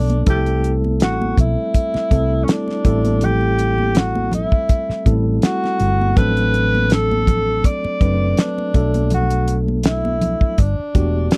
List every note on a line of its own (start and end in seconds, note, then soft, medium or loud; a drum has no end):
0.00 0.22 B1 medium
0.00 0.29 F#3 medium
0.00 0.27 A3 medium
0.00 0.28 B3 medium
0.00 0.24 D4 medium
0.00 0.28 D4 medium
0.00 0.27 A4 medium
0.10 closed hi-hat soft
0.10 high conga medium
0.26 1.01 C2 medium
0.26 1.35 G3 medium
0.26 1.35 A3 medium
0.26 1.36 C4 medium
0.26 1.36 E4 medium
0.26 0.72 G4 medium
0.26 1.36 A4 medium
0.26 kick loud
0.26 closed hi-hat medium
0.26 muted conga soft
0.26 low conga medium
0.46 closed hi-hat medium
0.64 closed hi-hat medium
0.84 high conga medium
1.00 1.33 A1 medium
1.00 1.36 F#4 medium
1.00 snare loud
1.00 closed hi-hat medium
1.22 muted conga soft
1.22 high conga medium
1.37 1.55 B1 medium
1.37 2.45 E4 medium
1.37 kick medium
1.37 closed hi-hat medium
1.37 low conga medium
1.74 kick medium
1.74 closed hi-hat medium
1.94 muted fingered electric bass stroke soft
1.94 snare soft
1.94 muted conga soft
2.11 2.43 C2 medium
2.11 2.84 G3 medium
2.11 2.84 A3 medium
2.11 2.84 C4 medium
2.11 2.84 E4 medium
2.11 2.85 A4 medium
2.11 kick medium
2.11 closed hi-hat medium
2.43 2.52 C#4 medium
2.48 3.26 D4 medium
2.48 snare loud
2.48 closed hi-hat medium
2.68 snare soft
2.68 muted conga soft
2.85 4.45 A1 medium
2.85 4.04 G3 medium
2.85 4.04 A3 medium
2.85 4.04 C4 medium
2.85 4.04 E4 medium
2.85 4.04 A4 medium
2.85 kick medium
2.85 closed hi-hat medium
3.05 closed hi-hat medium
3.05 high conga medium
3.21 4.00 G4 medium
3.21 closed hi-hat medium
3.21 low conga medium
3.41 muted conga soft
3.59 closed hi-hat medium
3.78 high conga medium
3.95 4.34 F#4 medium
3.95 snare loud
3.95 closed hi-hat medium
3.95 muted conga soft
4.15 muted conga soft
4.15 high conga medium
4.32 5.14 E4 loud
4.32 closed hi-hat medium
4.32 low conga medium
4.52 kick medium
4.69 kick medium
4.69 closed hi-hat medium
4.69 muted conga soft
4.89 muted fingered electric bass stroke soft
4.89 snare soft
5.06 5.38 A1 medium
5.06 5.88 G3 medium
5.06 5.88 A3 medium
5.06 5.88 C4 medium
5.06 5.88 E4 medium
5.06 5.88 A4 medium
5.06 kick medium
5.06 closed hi-hat medium
5.42 6.19 F#4 loud
5.42 snare medium
5.42 closed hi-hat medium
5.42 muted conga soft
5.64 snare soft
5.64 muted conga soft
5.80 6.12 G1 medium
5.80 closed hi-hat medium
6.01 high conga medium
6.16 7.60 A1 loud
6.16 7.25 F#3 medium
6.16 7.25 A3 medium
6.16 7.25 C4 medium
6.16 7.26 D4 medium
6.16 7.26 A4 medium
6.16 6.94 B4 loud
6.16 kick loud
6.16 closed hi-hat medium
6.16 low conga medium
6.37 closed hi-hat medium
6.37 muted conga soft
6.54 closed hi-hat medium
6.75 high conga medium
6.90 7.67 A4 medium
6.90 snare loud
6.90 closed hi-hat medium
6.90 muted conga soft
7.11 high conga medium
7.27 kick medium
7.27 closed hi-hat medium
7.27 low conga medium
7.64 8.41 D5 loud
7.64 kick medium
7.64 closed hi-hat medium
7.64 muted conga soft
7.84 muted fingered electric bass stroke soft
7.84 muted conga soft
8.01 8.33 F#1 medium
8.01 8.73 F#3 medium
8.01 8.73 A3 medium
8.01 8.75 C4 medium
8.01 8.74 D4 medium
8.01 8.75 B4 medium
8.01 kick medium
8.01 closed hi-hat medium
8.37 9.12 D4 medium
8.37 snare medium
8.37 closed hi-hat medium
8.58 muted conga soft
8.74 10.34 B1 medium
8.74 9.93 F#3 medium
8.74 9.93 A3 medium
8.74 9.93 B3 medium
8.74 9.93 D4 medium
8.74 9.93 A4 medium
8.74 kick medium
8.74 closed hi-hat medium
8.94 closed hi-hat medium
8.94 high conga medium
9.10 9.57 F#4 medium
9.10 closed hi-hat medium
9.10 low conga medium
9.30 closed hi-hat medium
9.48 closed hi-hat medium
9.68 high conga medium
9.83 10.61 E4 medium
9.83 snare loud
9.83 closed hi-hat medium
9.83 muted conga soft
10.05 muted conga soft
10.05 high conga medium
10.21 closed hi-hat medium
10.21 low conga medium
10.41 kick medium
10.58 10.76 G1 medium
10.58 11.38 D4 medium
10.58 kick medium
10.58 closed hi-hat medium
10.79 muted fingered electric bass stroke soft
10.95 11.27 E1 medium
10.95 11.38 A3 medium
10.95 11.38 B3 medium
10.95 11.38 D4 medium
10.95 11.38 F#4 medium
10.95 11.38 G4 medium
10.95 kick medium
10.95 closed hi-hat medium
11.31 snare loud
11.31 closed hi-hat medium